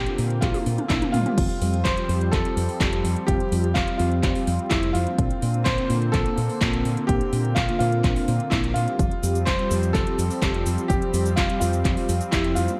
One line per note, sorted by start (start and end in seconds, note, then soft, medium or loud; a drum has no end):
0.00 1.34 D3 medium
0.00 1.34 A#3 medium
0.00 1.34 C4 medium
0.00 0.43 G4 medium
0.07 0.51 A#3 medium
0.07 0.51 C4 medium
0.07 0.51 D4 medium
0.07 0.51 F4 loud
0.07 closed hi-hat soft
0.18 0.39 A#2 loud
0.18 open hi-hat loud
0.30 closed hi-hat soft
0.41 0.53 A#1 loud
0.41 1.09 F4 medium
0.41 kick loud
0.41 clap medium
0.41 closed hi-hat medium
0.41 high tom medium
0.54 0.69 A#3 medium
0.54 0.69 C4 medium
0.54 0.69 D4 medium
0.54 0.69 F4 loud
0.54 open hi-hat medium
0.54 high tom medium
0.66 0.76 A#2 medium
0.66 open hi-hat loud
0.78 closed hi-hat soft
0.78 mid tom medium
0.88 1.00 A#1 loud
0.88 0.99 A#3 medium
0.88 0.99 C4 medium
0.88 0.99 D4 medium
0.88 0.94 E4 loud
0.88 0.99 F4 loud
0.88 kick loud
0.88 clap loud
0.88 closed hi-hat medium
0.88 mid tom medium
1.02 1.17 A#3 medium
1.02 1.17 C4 medium
1.02 1.17 D4 medium
1.02 1.17 F4 medium
1.02 closed hi-hat soft
1.02 mid tom medium
1.12 1.24 A#2 medium
1.12 1.87 F4 loud
1.12 mid tom medium
1.12 open hi-hat loud
1.26 1.50 G3 medium
1.26 1.50 C4 medium
1.26 1.50 F4 medium
1.26 1.50 G4 medium
1.26 closed hi-hat soft
1.26 mid tom medium
1.38 1.48 F1 loud
1.38 5.15 F3 medium
1.38 5.15 G3 medium
1.38 8.96 C4 medium
1.38 kick loud
1.38 closed hi-hat loud
1.38 crash loud
1.50 closed hi-hat soft
1.61 1.82 F2 loud
1.61 1.76 G3 loud
1.61 1.76 C4 medium
1.61 1.76 F4 medium
1.61 1.76 G4 loud
1.61 open hi-hat loud
1.74 closed hi-hat soft
1.84 1.95 F1 medium
1.84 2.34 C5 loud
1.84 kick loud
1.84 clap loud
1.84 closed hi-hat loud
1.97 2.42 G3 loud
1.97 2.42 C4 medium
1.97 2.42 F4 medium
1.97 2.42 G4 loud
1.97 closed hi-hat soft
2.09 2.30 F2 loud
2.09 open hi-hat loud
2.21 closed hi-hat soft
2.32 2.43 F1 loud
2.32 3.30 A4 loud
2.32 kick loud
2.32 clap medium
2.32 closed hi-hat medium
2.45 2.60 G3 loud
2.45 2.60 C4 medium
2.45 2.60 F4 medium
2.45 2.60 G4 loud
2.45 closed hi-hat soft
2.57 2.67 F2 medium
2.57 open hi-hat loud
2.69 open hi-hat medium
2.80 3.01 F1 medium
2.80 2.89 G3 medium
2.80 2.89 C4 medium
2.80 2.89 F4 medium
2.80 2.89 G4 loud
2.80 kick loud
2.80 clap loud
2.80 closed hi-hat loud
2.92 3.07 G3 medium
2.92 3.07 C4 medium
2.92 3.07 F4 medium
2.92 3.07 G4 medium
2.92 closed hi-hat soft
3.04 3.14 F2 medium
3.04 open hi-hat loud
3.16 3.40 G3 medium
3.16 3.40 C4 medium
3.16 3.40 F4 medium
3.16 3.40 G4 medium
3.16 closed hi-hat soft
3.27 3.38 F1 loud
3.27 3.71 G4 loud
3.27 kick loud
3.27 closed hi-hat medium
3.40 closed hi-hat soft
3.52 3.72 F2 medium
3.52 3.67 G3 medium
3.52 3.67 C4 medium
3.52 3.67 F4 medium
3.52 3.67 G4 loud
3.52 open hi-hat loud
3.64 closed hi-hat soft
3.74 3.86 F1 medium
3.74 3.96 F4 loud
3.74 kick loud
3.74 clap loud
3.74 closed hi-hat medium
3.87 4.32 G3 medium
3.87 4.32 C4 medium
3.87 4.32 F4 medium
3.87 4.32 G4 loud
3.87 closed hi-hat soft
3.98 4.20 F2 loud
3.98 4.72 F4 loud
3.98 open hi-hat loud
4.12 closed hi-hat soft
4.23 4.34 F1 loud
4.23 kick loud
4.23 clap medium
4.23 closed hi-hat medium
4.35 4.50 G3 medium
4.35 4.50 C4 medium
4.35 4.50 F4 medium
4.35 4.50 G4 loud
4.35 open hi-hat medium
4.47 4.57 F2 medium
4.47 open hi-hat loud
4.59 closed hi-hat soft
4.69 4.91 F1 medium
4.69 4.80 G3 medium
4.69 4.80 C4 medium
4.69 4.95 E4 loud
4.69 4.80 F4 medium
4.69 4.80 G4 loud
4.69 kick loud
4.69 clap loud
4.69 closed hi-hat medium
4.83 4.98 G3 medium
4.83 4.98 C4 medium
4.83 4.98 F4 medium
4.83 4.98 G4 medium
4.83 closed hi-hat soft
4.93 5.05 F2 medium
4.93 5.67 F4 loud
4.93 open hi-hat loud
5.07 5.31 A#3 medium
5.07 5.31 C4 medium
5.07 5.31 D4 medium
5.07 5.31 F4 medium
5.07 closed hi-hat soft
5.18 5.29 A#1 loud
5.18 8.95 D3 medium
5.18 8.96 A#3 medium
5.18 kick loud
5.18 closed hi-hat medium
5.31 closed hi-hat soft
5.42 5.63 A#2 loud
5.42 5.57 A#3 medium
5.42 5.57 C4 medium
5.42 5.57 D4 medium
5.42 5.57 F4 loud
5.42 open hi-hat loud
5.54 closed hi-hat soft
5.64 5.76 A#1 medium
5.64 6.14 C5 loud
5.64 kick loud
5.64 clap loud
5.64 closed hi-hat medium
5.78 6.23 A#3 loud
5.78 6.23 C4 medium
5.78 6.23 D4 medium
5.78 6.23 F4 loud
5.78 closed hi-hat soft
5.90 6.11 A#2 loud
5.90 open hi-hat loud
6.02 closed hi-hat soft
6.12 6.24 A#1 loud
6.12 7.11 A4 loud
6.12 kick loud
6.12 clap medium
6.12 closed hi-hat medium
6.26 6.41 A#3 medium
6.26 6.41 C4 medium
6.26 6.41 D4 medium
6.26 6.41 F4 loud
6.26 closed hi-hat soft
6.38 6.48 A#2 medium
6.38 open hi-hat loud
6.49 open hi-hat medium
6.61 6.82 A#1 medium
6.61 6.70 A#3 loud
6.61 6.70 C4 medium
6.61 6.70 D4 medium
6.61 6.70 F4 loud
6.61 kick loud
6.61 clap loud
6.61 closed hi-hat medium
6.73 6.88 A#3 medium
6.73 6.88 C4 medium
6.73 6.88 D4 medium
6.73 6.88 F4 medium
6.73 closed hi-hat soft
6.85 6.95 A#2 medium
6.85 open hi-hat loud
6.97 7.21 A#3 medium
6.97 7.21 C4 medium
6.97 7.21 D4 medium
6.97 7.21 F4 medium
6.97 closed hi-hat soft
7.07 7.19 A#1 loud
7.07 7.57 G4 loud
7.07 kick loud
7.07 closed hi-hat medium
7.21 closed hi-hat soft
7.33 7.53 A#2 loud
7.33 7.48 A#3 medium
7.33 7.48 C4 medium
7.33 7.48 D4 medium
7.33 7.48 F4 loud
7.33 open hi-hat loud
7.45 closed hi-hat soft
7.55 7.67 A#1 medium
7.55 7.77 F4 loud
7.55 kick loud
7.55 clap loud
7.55 closed hi-hat medium
7.69 8.13 A#3 loud
7.69 8.13 C4 medium
7.69 8.13 D4 medium
7.69 8.13 F4 loud
7.69 closed hi-hat soft
7.79 8.01 A#2 loud
7.79 8.53 F4 loud
7.79 open hi-hat loud
7.92 closed hi-hat soft
8.04 8.14 A#1 loud
8.04 kick loud
8.04 clap medium
8.04 closed hi-hat medium
8.16 8.31 A#3 medium
8.16 8.31 C4 medium
8.16 8.31 D4 medium
8.16 8.31 F4 loud
8.16 open hi-hat medium
8.28 8.38 A#2 medium
8.28 open hi-hat loud
8.40 closed hi-hat soft
8.50 8.72 A#1 medium
8.50 8.61 A#3 medium
8.50 8.61 C4 medium
8.50 8.61 D4 medium
8.50 8.56 E4 medium
8.50 8.61 F4 loud
8.50 kick loud
8.50 clap loud
8.50 closed hi-hat medium
8.64 8.79 A#3 medium
8.64 8.79 C4 medium
8.64 8.79 D4 medium
8.64 8.79 F4 medium
8.64 closed hi-hat soft
8.74 8.86 A#2 medium
8.74 9.48 F4 loud
8.74 open hi-hat loud
8.88 9.12 G3 medium
8.88 9.12 C4 medium
8.88 9.12 F4 medium
8.88 9.12 G4 medium
8.88 closed hi-hat soft
8.99 9.10 F1 loud
8.99 12.76 F3 medium
8.99 12.77 G3 medium
8.99 12.80 C4 medium
8.99 kick loud
8.99 closed hi-hat medium
8.99 cabasa soft
9.11 closed hi-hat soft
9.23 9.44 F2 medium
9.23 9.38 G3 loud
9.23 9.38 C4 medium
9.23 9.38 F4 medium
9.23 9.38 G4 loud
9.23 open hi-hat loud
9.23 cabasa medium
9.35 closed hi-hat soft
9.35 cabasa soft
9.46 9.57 F1 medium
9.46 9.95 C5 loud
9.46 kick loud
9.46 clap loud
9.46 closed hi-hat medium
9.46 cabasa soft
9.59 10.04 G3 loud
9.59 10.04 C4 medium
9.59 10.04 F4 medium
9.59 10.04 G4 loud
9.59 closed hi-hat soft
9.71 9.91 F2 loud
9.71 open hi-hat loud
9.71 cabasa medium
9.83 closed hi-hat soft
9.83 cabasa soft
9.93 10.05 F1 loud
9.93 10.85 A4 loud
9.93 kick loud
9.93 clap medium
9.93 closed hi-hat medium
9.93 cabasa soft
10.07 10.22 G3 medium
10.07 10.22 C4 medium
10.07 10.22 F4 medium
10.07 10.21 G4 loud
10.07 closed hi-hat soft
10.18 10.29 F2 medium
10.18 open hi-hat loud
10.18 cabasa medium
10.31 open hi-hat medium
10.31 cabasa soft
10.42 10.63 F1 medium
10.42 10.51 G3 medium
10.42 10.51 C4 medium
10.42 10.51 F4 medium
10.42 10.51 G4 loud
10.42 kick loud
10.42 clap loud
10.42 closed hi-hat medium
10.42 cabasa soft
10.54 10.69 G3 medium
10.54 10.69 C4 medium
10.54 10.69 F4 medium
10.54 10.69 G4 medium
10.54 closed hi-hat soft
10.66 10.76 F2 medium
10.66 open hi-hat loud
10.66 cabasa medium
10.78 11.02 G3 medium
10.78 11.02 C4 medium
10.78 11.02 F4 medium
10.78 11.02 G4 medium
10.78 closed hi-hat soft
10.78 cabasa soft
10.88 11.00 F1 loud
10.88 11.33 G4 loud
10.88 kick loud
10.88 closed hi-hat medium
10.88 cabasa soft
11.02 closed hi-hat soft
11.13 11.34 F2 loud
11.13 11.29 G3 loud
11.13 11.29 C4 medium
11.13 11.29 F4 medium
11.13 11.29 G4 loud
11.13 open hi-hat loud
11.13 cabasa medium
11.26 closed hi-hat soft
11.26 cabasa soft
11.36 11.48 F1 medium
11.36 11.58 F4 medium
11.36 kick loud
11.36 clap loud
11.36 closed hi-hat medium
11.36 cabasa soft
11.49 11.94 G3 loud
11.49 11.94 C4 medium
11.49 11.94 F4 medium
11.49 11.94 G4 loud
11.49 closed hi-hat soft
11.60 11.82 F2 loud
11.60 12.34 F4 medium
11.60 open hi-hat loud
11.60 cabasa medium
11.73 closed hi-hat soft
11.73 cabasa soft
11.85 11.95 F1 loud
11.85 kick loud
11.85 clap medium
11.85 closed hi-hat medium
11.85 cabasa soft
11.97 12.12 G3 medium
11.97 12.12 C4 medium
11.97 12.12 F4 medium
11.97 12.12 G4 loud
11.97 open hi-hat medium
12.09 12.19 F2 medium
12.09 open hi-hat loud
12.09 cabasa medium
12.21 closed hi-hat soft
12.21 cabasa soft
12.31 12.53 F1 medium
12.31 12.42 G3 loud
12.31 12.42 C4 medium
12.31 12.57 E4 medium
12.31 12.42 F4 medium
12.31 12.42 G4 loud
12.31 kick loud
12.31 clap loud
12.31 closed hi-hat medium
12.31 cabasa soft
12.44 12.60 G3 medium
12.44 12.60 C4 medium
12.44 12.60 F4 medium
12.44 12.60 G4 medium
12.44 closed hi-hat soft
12.55 12.67 F2 medium
12.55 12.80 F4 medium
12.55 open hi-hat loud
12.55 cabasa medium
12.68 12.80 A#3 medium
12.68 12.80 C4 medium
12.68 12.80 D4 medium
12.68 12.80 F4 medium
12.68 closed hi-hat soft
12.68 cabasa soft